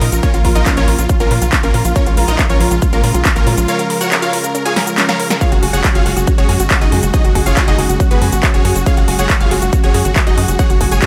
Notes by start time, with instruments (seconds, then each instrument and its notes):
Already playing: analog synth pad C#3 F3 A#3 F4
0.01 analog synth bass A#2, supersaw synth A#4, synth pluck A#4, open hi-hat
0.12 analog synth bass A#1, synth pluck F4 A#4, supersaw synth A#4, closed hi-hat, shaker
0.23 supersaw synth C#4 F4 A#4 C#5, synth pluck C#4 C#5, kick, closed hi-hat, shaker
0.34 analog synth bass A#1, supersaw synth F4, synth pluck F4, closed hi-hat, shaker
0.44 analog synth bass A#1, supersaw synth F4, synth pluck F4 A#4, kick, open hi-hat
0.55 analog synth bass A#1, supersaw synth D#4 F4 A#4 D#5, synth pluck F4 D#5, closed hi-hat, shaker
0.66 synth pluck C#4 F4, supersaw synth F4, kick, clap, closed hi-hat, shaker
0.77 analog synth bass A#1, supersaw synth C#4 F4 A#4 C#5, synth pluck F4 C#5, closed hi-hat, shaker
0.88 analog synth bass A#1, supersaw synth F4, synth pluck F4 A#4, open hi-hat
0.98 analog synth bass A#1, supersaw synth F4, synth pluck F4, closed hi-hat, shaker
1.09 synth pluck C#4 F4, supersaw synth F4, kick, closed hi-hat, shaker
1.20 analog synth bass A#1, supersaw synth A#3 C#4 F4 A#4, synth pluck F4 A#4, closed hi-hat, shaker
1.31 analog synth bass A#2, supersaw synth F4, synth pluck F4 A#4, open hi-hat
1.42 analog synth bass B1, supersaw synth F4, synth pluck F4, closed hi-hat, shaker
1.53 synth pluck C#4 F4, supersaw synth F4, kick, clap, closed hi-hat, shaker
1.63 analog synth bass A#1, supersaw synth A#3 C#4 F4 A#4, synth pluck F4 A#4, closed hi-hat, shaker
1.74 analog synth bass A#2, synth pluck F4 A#4, supersaw synth F4, open hi-hat
1.85 analog synth bass A#1, synth pluck F4, supersaw synth F4, closed hi-hat, shaker
1.96 analog synth pad G#3, synth pluck C#4 C#5, supersaw synth C#4 F4 A#4 C#5, kick, closed hi-hat, shaker
2.06 analog synth bass A#1, supersaw synth F4, synth pluck F4, closed hi-hat, shaker
2.17 analog synth bass A#1, supersaw synth F4, synth pluck F4 A#4, open hi-hat
2.28 analog synth bass A#1, supersaw synth D#4 F4 A#4 D#5, synth pluck F4 D#5, closed hi-hat, shaker
2.39 synth pluck C#4 F4, supersaw synth F4, kick, clap, closed hi-hat, shaker
2.50 analog synth bass A#1, supersaw synth C#4 F4 A#4 C#5, synth pluck F4 C#5, closed hi-hat, shaker
2.60 analog synth bass A#1, supersaw synth F4, synth pluck F4 A#4, open hi-hat
2.71 analog synth bass A#1, synth pluck F4, supersaw synth F4, closed hi-hat, shaker
2.82 synth pluck C#4 F4, supersaw synth F4, kick, closed hi-hat, shaker
2.93 analog synth bass A#1, supersaw synth A#3 C#4 F4 A#4, synth pluck F4 A#4, closed hi-hat, shaker
3.04 analog synth bass A#2, synth pluck F4 A#4, supersaw synth F4, open hi-hat
3.14 analog synth bass B1, synth pluck F4, supersaw synth F4, closed hi-hat, shaker
3.25 synth pluck C#4 F4, supersaw synth F4, kick, clap, closed hi-hat, shaker
3.36 analog synth bass A#1, supersaw synth A#3 C#4 F4 A#4, synth pluck F4 A#4, closed hi-hat, shaker
3.47 analog synth bass A#2, synth pluck F4 A#4, supersaw synth F4, open hi-hat
3.57 analog synth bass A#1, synth pluck F4, supersaw synth F4, closed hi-hat, shaker
3.68 synth pluck C#4 F5, supersaw synth F4 A#4 C#5 F5, closed hi-hat, shaker
3.79 synth pluck F4 A#4, supersaw synth A#4, closed hi-hat, shaker
3.90 synth pluck A#4, supersaw synth A#4, open hi-hat
4.01 synth pluck F4 F#5, supersaw synth F#4 A#4 C#5 F#5, closed hi-hat, shaker
4.11 synth pluck C#4 A#4, supersaw synth A#4, clap, closed hi-hat, shaker
4.22 supersaw synth F4 A#4 C#5 F5, synth pluck F4 F5, closed hi-hat, shaker
4.33 synth pluck A#4, supersaw synth A#4, open hi-hat
4.44 synth pluck F4 A#4, supersaw synth A#4, closed hi-hat, shaker
4.54 synth pluck C#4 A#4, supersaw synth A#4, closed hi-hat, shaker
4.65 synth pluck F4 G#5, supersaw synth G#4 C#5 F5 G#5, closed hi-hat, shaker
4.76 supersaw synth A#4, synth pluck A#4, snare, open hi-hat
4.87 synth pluck F4 A#4, supersaw synth A#4, closed hi-hat, shaker
4.98 synth pluck C#4 A#4, supersaw synth A#4, snare, clap, closed hi-hat, shaker
5.08 synth pluck F4 A#5, supersaw synth A#4 C#5 F5 A#5, snare, closed hi-hat, shaker
5.19 supersaw synth A#4, synth pluck A#4, open hi-hat
5.30 synth pluck F4 A#4, supersaw synth A#4, snare, closed hi-hat, shaker
5.41 analog synth pad F#3 F#4, synth pluck C#4 F5, supersaw synth F4 G#4 C#5 F5, kick, closed hi-hat, shaker
5.52 analog synth bass F#1, supersaw synth F#4, synth pluck F#4, closed hi-hat, shaker
5.62 analog synth bass F#1, supersaw synth F#4, synth pluck F#4 G#4, open hi-hat
5.73 analog synth bass F#1, supersaw synth F#4 G#4 C#5 F#5, synth pluck F#4 F#5, closed hi-hat, shaker
5.84 synth pluck C#4 F#4, supersaw synth F#4, kick, clap, closed hi-hat, shaker
5.95 analog synth bass F#1, supersaw synth F4 G#4 C#5 F5, synth pluck F#4 F5, closed hi-hat, shaker
6.05 analog synth bass F#1, supersaw synth F#4, synth pluck F#4 G#4, open hi-hat
6.16 analog synth bass F#1, supersaw synth F#4, synth pluck F#4, closed hi-hat, shaker
6.27 synth pluck C#4 F#4, supersaw synth F#4, kick, closed hi-hat, shaker
6.38 analog synth bass F#1, supersaw synth C#4 F#4 G#4 C#5, synth pluck F#4 C#5, closed hi-hat, shaker
6.49 analog synth bass F#2, supersaw synth F#4, synth pluck F#4 G#4, open hi-hat
6.60 analog synth bass G#1, supersaw synth F#4, synth pluck F#4, closed hi-hat, shaker
6.70 synth pluck C#4 F#4, supersaw synth F#4, kick, clap, closed hi-hat, shaker
6.81 analog synth bass F#1, supersaw synth D#4 F#4 G#4 D#5, synth pluck F#4 D#5, closed hi-hat, shaker
6.92 analog synth bass F#2, supersaw synth F#4, synth pluck F#4 G#4, open hi-hat
7.03 analog synth bass F#1, synth pluck F#4, supersaw synth F#4, closed hi-hat, shaker
7.13 synth pluck C#4 D#5, supersaw synth D#4 F#4 G#4 D#5, kick, closed hi-hat, shaker
7.24 analog synth bass F#1, synth pluck F#4, supersaw synth F#4, closed hi-hat, shaker
7.35 analog synth bass F#1, synth pluck F#4 G#4, supersaw synth F#4, kick, open hi-hat
7.46 analog synth bass F#1, supersaw synth F4 G#4 C#5 F5, synth pluck F#4 F5, closed hi-hat, shaker
7.57 synth pluck C#4 F#4, supersaw synth F#4, kick, clap, closed hi-hat, shaker
7.68 analog synth bass F#1, supersaw synth D#4 F#4 G#4 D#5, synth pluck F#4 D#5, closed hi-hat, shaker
7.78 analog synth bass F#1, synth pluck F#4 G#4, supersaw synth F#4, open hi-hat
7.89 analog synth bass F#1, synth pluck F#4, supersaw synth F#4, closed hi-hat, shaker
8.00 synth pluck C#4 F#4, supersaw synth F#4, kick, closed hi-hat, shaker
8.11 analog synth bass F#1, supersaw synth B3 F#4 G#4 B4, synth pluck F#4 B4, closed hi-hat, shaker
8.22 analog synth bass F#2, synth pluck F#4 G#4, supersaw synth F#4, open hi-hat
8.32 analog synth bass G#1, supersaw synth F#4, synth pluck F#4, closed hi-hat, shaker
8.43 synth pluck C#4 F#4, supersaw synth F#4, kick, clap, closed hi-hat, shaker
8.54 analog synth bass F#1, supersaw synth C#4 F#4 G#4 C#5, synth pluck F#4 C#5, closed hi-hat, shaker
8.65 analog synth bass F#2, synth pluck F#4 G#4, supersaw synth F#4, open hi-hat
8.76 analog synth bass F#1, synth pluck F#4, supersaw synth F#4, closed hi-hat, shaker
8.86 synth pluck C#4 F5, supersaw synth F4 G#4 C#5 F5, kick, closed hi-hat, shaker
8.97 analog synth bass F#1, synth pluck F#4, supersaw synth F#4, closed hi-hat, shaker
9.08 analog synth bass F#1, synth pluck F#4 G#4, supersaw synth F#4, open hi-hat
9.19 analog synth bass F#1, synth pluck F#4 F#5, supersaw synth F#4 G#4 C#5 F#5, closed hi-hat, shaker
9.29 synth pluck C#4 F#4, supersaw synth F#4, kick, clap, closed hi-hat, shaker
9.40 analog synth bass F#1, supersaw synth F4 G#4 C#5 F5, synth pluck F#4 F5, closed hi-hat, shaker
9.51 analog synth bass F#1, synth pluck F#4 G#4, supersaw synth F#4, open hi-hat
9.62 analog synth bass F#1, synth pluck F#4, supersaw synth F#4, closed hi-hat, shaker
9.73 synth pluck C#4 F#4, supersaw synth F#4, kick, closed hi-hat, shaker
9.83 analog synth bass F#1, supersaw synth C#4 F#4 G#4 C#5, synth pluck F#4 C#5, closed hi-hat, shaker
9.94 analog synth bass F#2, supersaw synth F#4, synth pluck F#4 G#4, open hi-hat
10.05 analog synth bass G#1, synth pluck F#4, supersaw synth F#4, closed hi-hat, shaker
10.16 synth pluck C#4 F#4, supersaw synth F#4, kick, clap, closed hi-hat, shaker
10.27 analog synth bass F#1, supersaw synth D#4 F#4 G#4 D#5, synth pluck F#4 D#5, closed hi-hat, shaker
10.37 analog synth bass F#2, supersaw synth F#4, synth pluck F#4 G#4, open hi-hat
10.48 analog synth bass F#1, synth pluck F#4, supersaw synth F#4, closed hi-hat, shaker
10.59 synth pluck C#4 F#5, supersaw synth F#4 G#4 C#5 F#5, kick, closed hi-hat, shaker
10.70 analog synth bass F#1, synth pluck F#4, supersaw synth F#4, closed hi-hat, shaker
10.81 analog synth bass F#1, supersaw synth F#4, synth pluck F#4 G#4, kick, open hi-hat
10.91 analog synth bass F#1, synth pluck F#4 G#5, supersaw synth G#4 C#5 G#5, closed hi-hat, shaker
11.02 synth pluck C#4 F#4, supersaw synth F#4, kick, clap, closed hi-hat, shaker